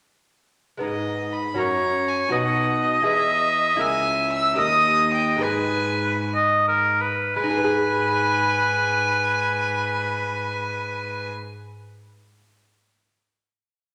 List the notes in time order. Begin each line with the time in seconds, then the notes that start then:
0.77 G#3 B3 D#4
0.82 G#2 B4 D#5
1.33 B5
1.54 F#2 C#4 F#4 A#4 A#5
1.58 F#2 C#5
2.08 G#5
2.28 D#4 F#4 B4 D#5
2.32 B2 F#5
2.82 D#5
3.02 E4 G#4 B4
3.06 E2 E5
3.76 C#2 E4 G#4 A#4 E5
3.81 G#5
4.33 E6
4.53 D#4 G4 A#4
4.58 D#2 D#5 D#6
5.14 G5
5.37 G#3 D#4 G#4
5.41 G#2 B4 G#5
6.34 D#5
6.68 A#4
7.01 B4
7.36 G#2 G#3 B4 G#5
7.43 D#4
7.50 G#4
7.58 B4
7.64 G#4